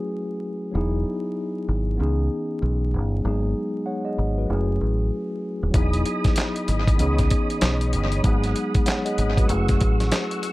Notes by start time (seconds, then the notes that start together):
Already playing: F#3 A3 C#4 E4 G#4
0.71 E1 F#3 B3 D#4
0.76 E4 G#4
1.69 G#1
1.96 C#2 E3 B3 C#4
2.01 D#4 G#4
2.62 B1
2.94 G1
3.22 G#1 F#3 G#3 B3
3.27 D#4 G#4
3.86 C#5 F#5
4.05 G#4 D#5
4.19 G#1
4.38 F#4 B4
4.45 F#3 A3 C#4
4.50 F#1 E4 G#4
4.81 A1
5.63 D#1
5.71 E1 F#3 B3 D#4 G#4 D#5 B5 D#6, kick, closed hi-hat
5.75 E4 G#4
5.94 closed hi-hat
6.06 closed hi-hat
6.24 kick, snare, closed hi-hat
6.36 snare, clap, closed hi-hat
6.56 closed hi-hat
6.68 G#1, closed hi-hat
6.87 kick, closed hi-hat
6.96 C#2 E3 B3 C#4, closed hi-hat
7.00 D#4 G#4 C#5 D#6
7.18 kick, closed hi-hat
7.30 kick, closed hi-hat
7.50 closed hi-hat
7.61 B1, snare, clap, closed hi-hat
7.81 closed hi-hat
7.93 G1, closed hi-hat
8.12 closed hi-hat
8.22 G#1 F#3 G#3 B3 G#4 F#5 D#6, kick, closed hi-hat
8.26 D#4 G#4
8.43 closed hi-hat
8.56 closed hi-hat
8.74 kick, closed hi-hat
8.86 C#5 F#5, snare, clap, closed hi-hat
9.05 G#4 D#5, closed hi-hat
9.18 G#1, closed hi-hat
9.38 F#4 B4, kick, closed hi-hat
9.46 F#1 F#3 A3 C#4 C#6 E6, closed hi-hat
9.50 E4 G#4
9.69 kick, closed hi-hat
9.81 A1, kick, closed hi-hat
10.00 snare, closed hi-hat
10.12 snare, clap, closed hi-hat
10.31 closed hi-hat
10.43 closed hi-hat